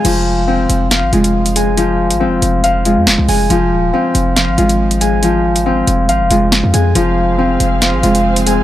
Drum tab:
CC |x---------------|----------------|----------------|----------------|
HH |x-----x-x-xx-xx-|x--x--x-x-x---o-|x-----x-x-xx-xx-|x--x--x-x-x---x-|
SD |--------o-------|------------o---|--------o-------|------------o---|

CC |----------------|
HH |x-----x-x-xx-xx-|
SD |--------o-------|